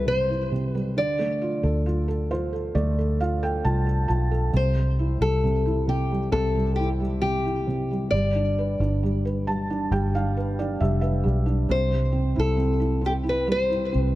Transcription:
Already playing: C2 C3 G3 E4
0.06 C3 C5
0.29 E4
0.51 C3
0.70 B4
0.75 G3
0.97 D2 D3 D5
1.19 A3
1.42 F4
1.63 D2 A4
1.86 F4
2.08 A4
2.31 F4 C5
2.53 A4
2.75 D2 A3 D5
2.98 A4
3.20 F4 F5
3.43 A4 G5
3.64 C2 F4 A5
3.86 A4
4.08 B1 F4 A5
4.31 A4
4.53 C2 C3 C5
4.75 G3
4.99 E4
5.20 C2 G3 A4
5.44 C3
5.66 E4
5.87 C3 G4
6.11 G3
6.32 C2 C3 A4
6.55 G3
6.76 E4 G4
7.00 G3
7.22 C3 G4
7.45 E4
7.67 C3
7.91 G3
8.11 G1 G3 D5
8.35 D4
8.59 B4
8.80 G1 D4
9.03 G3
9.25 B4
9.47 G3 A5
9.70 D4
9.91 G1 G3 G5
10.14 D4 F5
10.37 B4
10.59 D4 D5
10.80 F1 G3 E5
11.01 B4 E5
11.24 B1 G3
11.46 D4
11.69 C2 C3 C5
11.90 G3
12.12 C4
12.36 C2 E4 A4
12.56 C4
12.80 E4
13.01 C4
13.06 G4
13.23 E4
13.29 B4
13.47 G3
13.52 C5
13.70 E4
13.92 C2 C4
14.00 B4

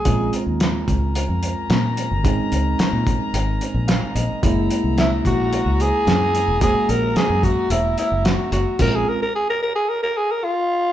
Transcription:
Already playing: G#4
0.05 A#1 G#3 C4 C#4 F4 A#4 G#5 A#5, kick, closed hi-hat
0.33 closed hi-hat
0.46 D#2
0.60 snare, closed hi-hat
0.88 C#2, kick, closed hi-hat
1.15 closed hi-hat
1.29 F2
1.43 closed hi-hat
1.70 A#2, snare, closed hi-hat
1.97 closed hi-hat
2.11 G#1
2.24 G#3 C4 C#4 D#4, kick, closed hi-hat
2.52 C#2, closed hi-hat
2.79 muted fingered electric bass stroke, snare, closed hi-hat
2.93 A#2
3.07 kick, closed hi-hat
3.33 G#1, closed hi-hat
3.61 closed hi-hat
3.74 A#1
3.88 F5, snare, closed hi-hat
4.15 A#1 D#5, closed hi-hat
4.42 F#1 G#3 A#3 C#4 E4 E5 F#5 A#5, kick, closed hi-hat
4.70 closed hi-hat
4.84 C2
4.98 E4, snare, closed hi-hat
5.25 A#1 F#4, kick, closed hi-hat
5.53 closed hi-hat
5.66 C#2
5.80 G#4, closed hi-hat
6.07 F#2, snare, closed hi-hat
6.35 closed hi-hat
6.48 E1
6.61 G#3 A#3 C#4 F#4 G#4, kick, closed hi-hat
6.89 A#1 A#4, closed hi-hat
7.16 G#4, muted fingered electric bass stroke, snare, closed hi-hat
7.29 F#2
7.43 F#4, kick, closed hi-hat
7.70 E1 E4, closed hi-hat
7.98 E4, closed hi-hat
8.12 F#1
8.25 F#4, snare, closed hi-hat
8.52 F#1 F#4, closed hi-hat
8.79 A#1 G#3 C4 C#4 F4 A#4 G#5 A#5, kick, closed hi-hat, crash
8.95 G#4
9.09 A#4
9.22 A#4
9.35 G#4
9.49 A#4
9.62 A#4
9.75 G#4
9.89 A#4
10.03 A#4
10.17 G#4
10.31 A#4
10.44 F4

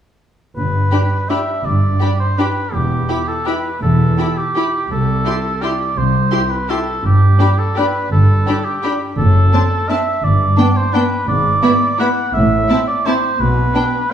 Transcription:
0.56 G1 G2 B4
0.92 D4 G4 B5
1.30 D4 G4 E5 B5
1.65 G1 G2 D5
2.01 D4 G4 B5
2.20 C5
2.38 D4 G4 B4 B5
2.73 E1 E2 G4
3.09 E4 G4 B5
3.28 A4
3.46 E4 G4 B4 B5
3.82 E1 E2 A4
4.18 E4 G4 B5
4.38 G4
4.55 E4 G4 B5
4.91 C2 A4
5.25 E4 G4 C6
5.62 E4 G4 D5 C6
5.96 C2 C5
6.31 E4 G4 C6
6.51 B4
6.69 E4 G4 A4 C6
7.04 G1 G2 G4
7.39 D4 G4 B5
7.59 A4
7.76 D4 G4 B4 B5
8.11 G1 G2 A4
8.47 D4 G4 B5
8.65 G4
8.84 D4 G4 B5
9.18 F#1 F#2 A4
9.53 C4 D4 A5
9.89 C4 D4 E5 A5
10.23 G1 G2 D5
10.57 B3 D4 G5
10.77 C5
10.93 B3 D4 B4 G5
11.28 G#1 G#2 D5
11.62 B3 E4 B5
11.99 B3 E4 F#5 B5
12.34 A1 A2 E5
12.69 C4 E4 A5
12.88 D5
13.06 C4 E4 C5 A5
13.40 B1 B2 B4
13.75 B3 D4 G5

